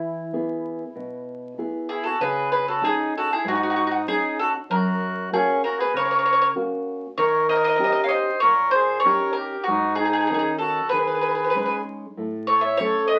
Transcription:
Already playing: E3 E4
0.33 B3 E4 G#4
0.95 B2
1.58 B3 E4 G#4
1.89 E4 G#4
2.04 F#4 A4
2.20 C#3 G#4 B4
2.52 G#4 B4
2.68 F#4 A4
2.82 C#4 D#4 G#4
2.86 D#4
3.18 F#4 A4
3.33 E4 G#4
3.44 G#2 F#4
3.51 D#4
3.55 F#4
3.63 F#4
3.70 F#4
3.76 F#4
3.87 F#4
3.91 F#4
4.08 C#4 D#4 G#4
4.39 F#4 A4
4.70 F#2 F#4 A#4
5.32 A#3 C#4 F#4 G#4
5.64 F#4 A#4
5.79 G#4 B4
5.94 C#3 A#4 C#5
6.05 C#5
6.11 C#5
6.19 C#5
6.25 C#5
6.33 C#5
6.41 C#5
6.55 A#3 C#4 F#4
7.18 D#3 A#4 C#5
7.49 A#4 D#5
7.55 D#5
7.64 D#5
7.76 C#4 D#4 G4 D#5
7.84 D#5
7.92 D#5
8.04 C#5 F5
8.09 D#5
8.14 C5
8.40 A#2 A#4 C#5
8.71 G#4 C5
9.00 C#5
9.05 C#4 D#4 G4 A#4
9.33 A#4
9.38 G4
9.64 F#4
9.68 G#2 D#4
9.95 D#4 G#4
10.05 G#4
10.13 G#4
10.21 G#4
10.27 D#3 C#4 D#4 G#4
10.34 G#4
10.39 G#4
10.58 F#4 A4
10.89 D#3 G#4 B4
10.99 B4
11.07 B4
11.15 B4
11.21 B4
11.28 B4
11.35 B4
11.44 B4
11.50 B4
11.55 G#3 C#4 D#4 B4
11.65 B4
12.17 A2
12.47 A4 C#5
12.61 C#5 E5
12.77 A3 C#4 A4 C#5
12.84 A4
13.08 D#5
13.14 B4

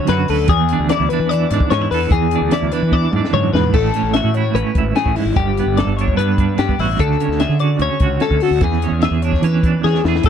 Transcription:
Already playing: D3 F#3 C#4 F#4
0.07 F#2 B4, snare, closed hi-hat
0.12 F#4
0.28 D2 A4 B4, open hi-hat
0.48 E2 G#4, kick, closed hi-hat
0.69 closed hi-hat
0.73 D4
0.79 D2
0.89 E4 D5, snare, closed hi-hat
1.00 D2
1.09 B4, closed hi-hat
1.13 D4
1.20 E3
1.29 D5, closed hi-hat
1.34 E3
1.50 G#2 D4, snare, closed hi-hat
1.60 kick
1.70 G#2 C#4 C#5, snare, closed hi-hat
1.82 E4
1.91 E2 A4 B4, open hi-hat
2.11 E2 G#4, kick, closed hi-hat
2.31 closed hi-hat
2.35 D4
2.41 D2
2.51 E4 D5, snare, closed hi-hat
2.62 D2
2.72 D4 B4, closed hi-hat
2.82 E3
2.92 E3 D5, kick, high tom
3.13 G#2 D4, mid tom
3.24 snare
3.33 F#2 G#2 C#5, mid tom
3.53 E2 G#2 B4, snare
3.64 floor tom
3.74 A1 A2 A4, kick, crash
3.85 snare
3.94 C#4, snare, closed hi-hat
4.03 A1
4.14 F#4 E5, snare, closed hi-hat
4.24 A2
4.34 E4 C#5, closed hi-hat
4.54 A1 C#4 B4, closed hi-hat
4.75 G#1 E4, kick, closed hi-hat
4.96 A2 G#4, snare, closed hi-hat
5.06 A1, kick
5.16 G#2 E4, open hi-hat
5.25 G#1
5.36 G1 G2 G4, kick, closed hi-hat
5.57 B3, closed hi-hat
5.66 G1
5.77 A4 D5, snare, closed hi-hat
5.87 G1
5.97 C#5, closed hi-hat
6.01 D4
6.08 kick
6.17 G2 B3 B4, closed hi-hat
6.38 D4, kick, closed hi-hat
6.58 G2 B3 G4, snare, closed hi-hat
6.69 kick
6.79 A1 E4 F#4, open hi-hat
6.99 D2 D3 A4, kick, closed hi-hat
7.11 snare
7.20 C#4, closed hi-hat
7.28 D2, snare
7.40 G#4 E5, snare, closed hi-hat
7.49 D3
7.59 F#4 D5, closed hi-hat
7.79 D2 C#4 C#5, closed hi-hat
8.00 C#2 F#4, kick, closed hi-hat
8.20 C#4 A4, snare, closed hi-hat
8.31 D2, kick
8.40 F#4 A4, open hi-hat
8.51 D2
8.61 E2 G#4, kick, closed hi-hat
8.73 snare
8.82 C#4, snare, closed hi-hat
8.91 E2
9.02 G#4 E5, snare, closed hi-hat
9.11 E2
9.22 D4 C#5, closed hi-hat
9.33 kick, snare
9.42 E3 C#4 B4, closed hi-hat
9.63 D4, kick, closed hi-hat
9.84 E3 C#4 G#4, snare
9.95 snare
10.04 E2 E4 G#4, snare
10.15 snare
10.23 A1 A4, kick, closed hi-hat

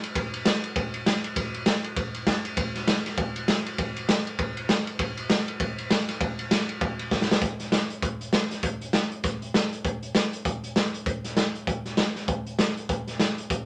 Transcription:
0.04 ride
0.15 kick, ride
0.34 ride
0.45 snare, ride
0.64 ride
0.76 kick, ride
0.94 ride
1.06 snare, ride
1.24 ride
1.36 kick, ride
1.54 ride
1.66 snare, ride
1.84 ride
1.96 kick, ride
2.15 ride
2.27 kick, snare, ride
2.45 ride
2.57 kick, ride
2.76 snare, ride
2.88 snare, ride
3.06 snare, ride
3.17 kick, ride
3.36 ride
3.48 snare, ride
3.66 ride
3.78 kick, ride
3.96 ride
4.09 snare, ride
4.27 ride
4.39 kick, ride
4.57 ride
4.69 snare, ride
4.87 ride
4.99 kick, ride
5.17 ride
5.30 snare, ride
5.48 ride
5.60 kick, ride
5.78 ride
5.91 snare, ride
6.09 snare, ride
6.21 kick, ride
6.39 ride
6.51 snare, ride
6.69 ride
6.81 kick, ride
6.99 ride
7.11 kick, snare
7.21 snare
7.31 snare
7.41 kick, closed hi-hat
7.60 snare, closed hi-hat
7.72 snare, closed hi-hat
7.90 closed hi-hat
8.02 kick, closed hi-hat
8.21 closed hi-hat
8.33 snare, closed hi-hat
8.51 snare, closed hi-hat
8.63 kick, closed hi-hat
8.81 closed hi-hat
8.93 snare, closed hi-hat
9.11 closed hi-hat
9.23 kick, snare, closed hi-hat
9.42 closed hi-hat
9.54 snare, closed hi-hat
9.73 closed hi-hat
9.84 kick, closed hi-hat
10.03 closed hi-hat
10.15 snare, closed hi-hat
10.33 closed hi-hat
10.45 kick, closed hi-hat
10.64 closed hi-hat
10.76 snare, closed hi-hat
10.94 closed hi-hat
11.06 kick, closed hi-hat
11.24 snare, closed hi-hat
11.37 snare, closed hi-hat
11.55 closed hi-hat
11.67 kick, closed hi-hat
11.86 snare, closed hi-hat
11.97 snare, closed hi-hat
12.16 snare, closed hi-hat
12.28 kick, closed hi-hat
12.47 closed hi-hat
12.59 snare, closed hi-hat
12.77 closed hi-hat
12.89 kick, closed hi-hat
13.07 snare, closed hi-hat
13.20 snare, closed hi-hat
13.38 closed hi-hat
13.50 kick, closed hi-hat

